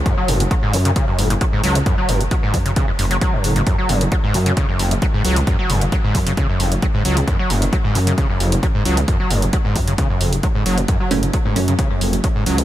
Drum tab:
HH |x-oxx-oxx-oxx-ox|x-oxx-oxx-oxx-ox|x-oxx-oxx-oxx-ox|x-oxx-oxx-oxx-ox|
BD |o---o---o---o---|o---o-o-o---o---|o---o---o---o---|o---o-o-o---o---|

HH |x-oxx-oxx-oxx-ox|x-oxx-oxx-oxx-ox|x-oxx-oxx-oxx-ox|
BD |o---o---o---o---|o---o-o-o---o---|o---o---o---o---|